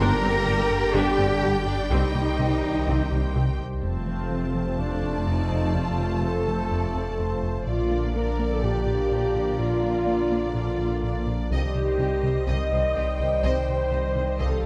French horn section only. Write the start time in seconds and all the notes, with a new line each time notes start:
0.00 A#3
0.96 G3
1.67 D3
1.90 D#3
3.84 C4
4.80 D4
5.27 D#4
5.75 F4
6.22 A4
7.69 F4
8.16 A#4
8.53 A4
8.63 G4
9.59 F4
10.56 F4
11.52 G4
12.48 D#5
13.43 C5
14.40 A4